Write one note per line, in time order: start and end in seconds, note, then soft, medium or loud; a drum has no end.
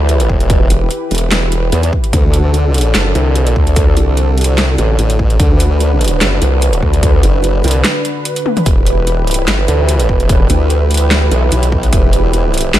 0.00 0.28 D2 loud
0.00 2.09 E3 medium
0.00 2.09 E4 medium
0.00 2.09 G4 medium
0.00 2.09 B4 medium
0.09 closed hi-hat medium
0.20 closed hi-hat medium
0.29 0.69 E1 loud
0.29 kick medium
0.40 closed hi-hat soft
0.50 kick loud
0.50 closed hi-hat medium
0.70 0.89 E1 loud
0.70 closed hi-hat medium
0.91 closed hi-hat medium
1.11 1.71 E1 loud
1.11 closed hi-hat soft
1.15 closed hi-hat medium
1.18 closed hi-hat medium
1.31 snare loud
1.31 clap medium
1.31 closed hi-hat medium
1.52 closed hi-hat medium
1.72 1.91 E2 loud
1.72 closed hi-hat medium
1.83 closed hi-hat medium
1.93 kick medium
2.04 closed hi-hat soft
2.13 2.93 D2 loud
2.13 8.62 D3 medium
2.13 8.62 D4 medium
2.13 8.62 F#4 medium
2.13 5.36 A4 medium
2.13 kick loud
2.13 closed hi-hat medium
2.34 closed hi-hat medium
2.54 closed hi-hat medium
2.74 closed hi-hat soft
2.78 closed hi-hat medium
2.81 closed hi-hat medium
2.95 3.14 F#1 loud
2.95 snare loud
2.95 clap medium
2.95 closed hi-hat medium
3.15 3.54 C2 loud
3.15 closed hi-hat medium
3.36 closed hi-hat medium
3.47 closed hi-hat medium
3.56 3.95 D2 loud
3.56 kick medium
3.67 closed hi-hat soft
3.76 kick loud
3.76 closed hi-hat medium
3.97 4.77 C2 medium
3.97 closed hi-hat medium
4.17 closed hi-hat medium
4.38 closed hi-hat soft
4.41 closed hi-hat medium
4.44 closed hi-hat medium
4.58 snare loud
4.58 clap medium
4.58 closed hi-hat medium
4.78 4.97 A1 loud
4.78 closed hi-hat medium
4.99 5.38 A1 medium
4.99 closed hi-hat medium
5.10 closed hi-hat medium
5.19 kick medium
5.30 closed hi-hat soft
5.40 6.20 D2 loud
5.40 12.79 B4 medium
5.40 kick loud
5.40 closed hi-hat medium
5.60 closed hi-hat medium
5.80 closed hi-hat medium
6.01 closed hi-hat medium
6.05 closed hi-hat medium
6.08 closed hi-hat medium
6.21 6.40 F#1 loud
6.21 snare loud
6.21 clap medium
6.21 closed hi-hat medium
6.42 6.81 C2 loud
6.42 closed hi-hat medium
6.62 closed hi-hat medium
6.73 closed hi-hat medium
6.83 7.22 D2 loud
6.83 kick medium
6.93 closed hi-hat soft
7.03 kick loud
7.03 closed hi-hat medium
7.23 7.63 F#1 loud
7.23 closed hi-hat medium
7.44 closed hi-hat medium
7.64 7.83 C2 loud
7.64 closed hi-hat medium
7.68 closed hi-hat medium
7.71 closed hi-hat medium
7.84 snare loud
7.84 clap medium
7.84 closed hi-hat medium
8.05 closed hi-hat medium
8.25 closed hi-hat medium
8.36 closed hi-hat medium
8.46 high tom medium
8.57 closed hi-hat soft
8.57 mid tom medium
8.66 9.46 E1 loud
8.66 12.79 E3 medium
8.66 12.79 E4 medium
8.66 12.79 G4 medium
8.66 kick loud
8.66 closed hi-hat medium
8.87 closed hi-hat medium
9.07 closed hi-hat medium
9.27 closed hi-hat medium
9.31 closed hi-hat medium
9.34 closed hi-hat medium
9.48 9.67 G1 loud
9.48 snare loud
9.48 clap loud
9.48 closed hi-hat medium
9.68 10.08 D2 loud
9.68 closed hi-hat medium
9.89 closed hi-hat medium
10.00 closed hi-hat medium
10.09 10.48 E1 loud
10.09 kick medium
10.20 closed hi-hat soft
10.29 kick loud
10.29 closed hi-hat medium
10.50 11.30 D2 loud
10.50 closed hi-hat medium
10.70 closed hi-hat medium
10.91 closed hi-hat soft
10.94 closed hi-hat medium
10.97 closed hi-hat medium
11.11 snare loud
11.11 clap loud
11.11 closed hi-hat medium
11.31 11.50 B1 loud
11.31 closed hi-hat medium
11.52 11.91 B1 medium
11.52 closed hi-hat medium
11.63 closed hi-hat medium
11.72 kick medium
11.83 closed hi-hat soft
11.93 12.73 E1 loud
11.93 kick loud
11.93 closed hi-hat medium
12.13 closed hi-hat medium
12.33 closed hi-hat medium
12.54 closed hi-hat medium
12.58 closed hi-hat medium
12.61 closed hi-hat medium
12.74 12.79 G1 loud
12.74 snare loud
12.74 clap loud
12.74 closed hi-hat medium